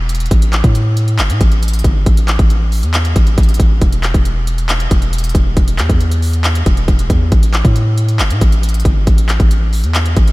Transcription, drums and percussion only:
0.09 closed hi-hat medium
0.15 closed hi-hat medium
0.20 closed hi-hat medium
0.26 closed hi-hat soft
0.31 kick loud
0.31 closed hi-hat medium
0.42 closed hi-hat medium
0.53 clap medium
0.53 closed hi-hat medium
0.64 kick loud
0.64 closed hi-hat medium
0.75 closed hi-hat medium
0.97 closed hi-hat medium
1.08 closed hi-hat medium
1.19 clap loud
1.19 closed hi-hat medium
1.30 closed hi-hat medium
1.41 kick loud
1.41 closed hi-hat medium
1.52 closed hi-hat medium
1.63 closed hi-hat medium
1.68 closed hi-hat medium
1.73 closed hi-hat medium
1.79 closed hi-hat medium
1.84 kick loud
1.84 closed hi-hat medium
2.06 kick loud
2.06 closed hi-hat medium
2.17 closed hi-hat medium
2.28 clap medium
2.28 closed hi-hat medium
2.39 kick loud
2.39 closed hi-hat medium
2.50 closed hi-hat medium
2.72 open hi-hat medium
2.83 closed hi-hat medium
2.94 clap loud
2.94 closed hi-hat medium
3.05 closed hi-hat medium
3.16 kick loud
3.16 closed hi-hat medium
3.27 closed hi-hat medium
3.38 kick loud
3.38 closed hi-hat medium
3.43 closed hi-hat medium
3.49 closed hi-hat medium
3.54 closed hi-hat medium
3.60 kick loud
3.60 closed hi-hat medium
3.82 kick loud
3.82 closed hi-hat medium
3.92 closed hi-hat medium
4.03 clap medium
4.03 closed hi-hat medium
4.14 kick loud
4.14 closed hi-hat medium
4.25 closed hi-hat medium
4.47 closed hi-hat medium
4.58 closed hi-hat medium
4.69 clap loud
4.69 closed hi-hat medium
4.80 closed hi-hat medium
4.91 kick loud
4.91 closed hi-hat medium
5.02 closed hi-hat medium
5.13 closed hi-hat medium
5.18 closed hi-hat medium
5.24 closed hi-hat medium
5.29 closed hi-hat medium
5.35 kick loud
5.35 closed hi-hat medium
5.57 kick loud
5.57 closed hi-hat medium
5.68 closed hi-hat medium
5.79 clap medium
5.79 closed hi-hat medium
5.89 kick loud
5.89 closed hi-hat medium
6.01 closed hi-hat medium
6.11 closed hi-hat medium
6.22 open hi-hat medium
6.33 closed hi-hat medium
6.44 clap loud
6.44 closed hi-hat medium
6.55 closed hi-hat medium
6.66 kick loud
6.66 closed hi-hat medium
6.77 closed hi-hat medium
6.88 kick loud
6.88 closed hi-hat medium
6.99 closed hi-hat medium
7.10 kick loud
7.10 closed hi-hat medium
7.32 kick loud
7.32 closed hi-hat medium
7.43 closed hi-hat medium
7.54 clap medium
7.54 closed hi-hat medium
7.65 kick loud
7.65 closed hi-hat medium
7.76 closed hi-hat medium
7.98 closed hi-hat medium
8.09 closed hi-hat medium
8.19 clap loud
8.19 closed hi-hat medium
8.30 closed hi-hat medium
8.41 kick loud
8.41 closed hi-hat medium
8.52 closed hi-hat medium
8.63 closed hi-hat medium
8.69 closed hi-hat medium
8.74 closed hi-hat medium
8.80 closed hi-hat medium
8.85 kick loud
8.85 closed hi-hat medium
9.07 kick loud
9.07 closed hi-hat medium
9.18 closed hi-hat medium
9.29 clap medium
9.29 closed hi-hat medium
9.40 kick loud
9.40 closed hi-hat medium
9.51 closed hi-hat medium
9.73 open hi-hat medium
9.84 closed hi-hat medium
9.95 clap loud
9.95 closed hi-hat medium
10.06 closed hi-hat medium
10.17 kick loud
10.17 closed hi-hat medium
10.28 closed hi-hat medium

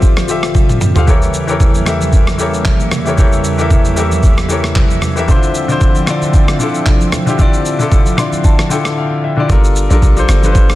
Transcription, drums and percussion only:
0.02 kick loud
0.02 shaker medium
0.17 cross-stick medium
0.17 high conga medium
0.17 shaker soft
0.28 shaker loud
0.43 cross-stick medium
0.43 shaker medium
0.55 kick medium
0.55 high tom medium
0.55 high conga medium
0.55 low conga medium
0.55 shaker medium
0.69 mid tom medium
0.69 high conga medium
0.69 shaker soft
0.81 mid tom medium
0.81 high conga medium
0.81 low conga medium
0.81 shaker medium
0.96 floor tom medium
0.96 shaker medium
1.08 kick loud
1.08 low conga medium
1.08 shaker medium
1.22 shaker medium
1.34 shaker medium
1.48 shaker medium
1.60 kick loud
1.60 low conga medium
1.60 shaker medium
1.74 high conga medium
1.74 shaker medium
1.86 cross-stick medium
1.86 shaker medium
2.01 high conga medium
2.01 shaker medium
2.13 kick loud
2.13 shaker medium
2.27 cross-stick loud
2.27 high conga medium
2.27 shaker medium
2.39 shaker loud
2.54 shaker medium
2.65 kick medium
2.65 clap medium
2.65 high conga medium
2.65 low conga medium
2.65 shaker medium
2.80 high conga medium
2.80 shaker soft
2.91 cross-stick loud
2.91 high conga medium
2.91 low conga medium
2.91 shaker medium
3.06 shaker medium
3.18 kick loud
3.18 low conga medium
3.18 shaker medium
3.32 shaker medium
3.44 shaker loud
3.59 shaker soft
3.70 kick loud
3.70 low conga medium
3.70 shaker medium
3.85 high conga medium
3.85 shaker medium
3.97 shaker medium
4.11 high conga medium
4.11 shaker medium
4.23 kick loud
4.23 shaker medium
4.38 cross-stick loud
4.38 high conga medium
4.38 shaker soft
4.50 shaker loud
4.64 cross-stick loud
4.64 shaker medium
4.76 kick medium
4.76 clap medium
4.76 high conga medium
4.76 low conga medium
4.76 shaker medium
4.90 high conga medium
4.90 shaker soft
5.02 cross-stick medium
5.02 high conga medium
5.02 low conga medium
5.02 shaker medium
5.17 shaker medium
5.28 kick loud
5.28 low conga medium
5.28 shaker medium
5.43 shaker medium
5.55 shaker loud
5.69 shaker medium
5.81 kick loud
5.81 low conga medium
5.81 shaker medium
5.95 high conga medium
5.95 shaker medium
6.07 cross-stick loud
6.07 shaker medium
6.22 high conga medium
6.22 shaker medium
6.34 kick loud
6.34 shaker medium
6.48 cross-stick loud
6.48 high conga medium
6.48 shaker medium
6.60 shaker medium
6.75 shaker medium
6.86 kick medium
6.86 clap medium
6.86 high conga medium
6.86 low conga medium
6.86 shaker medium
7.01 high conga medium
7.01 shaker soft
7.12 cross-stick loud
7.12 high conga medium
7.12 low conga medium
7.12 shaker medium
7.27 shaker medium
7.39 kick loud
7.39 low conga medium
7.39 shaker medium
7.53 shaker medium
7.65 shaker loud
7.80 shaker medium
7.92 kick loud
7.92 low conga medium
7.92 shaker medium
8.06 high conga medium
8.06 shaker medium
8.18 cross-stick loud
8.18 shaker medium
8.33 high conga medium
8.33 shaker medium
8.44 kick loud
8.44 shaker medium
8.59 cross-stick medium
8.59 high conga medium
8.59 shaker soft
8.71 shaker loud
8.85 cross-stick loud
8.85 shaker medium
9.49 kick loud
9.49 low conga medium
9.49 shaker medium
9.64 shaker medium
9.76 shaker loud
9.90 high conga medium
9.90 shaker medium
10.02 kick loud
10.02 low conga medium
10.02 shaker medium
10.17 high conga medium
10.17 shaker medium
10.29 cross-stick loud
10.29 shaker medium
10.43 high conga medium
10.43 shaker medium
10.55 kick loud
10.55 shaker medium
10.69 cross-stick loud
10.69 high conga medium
10.69 shaker medium

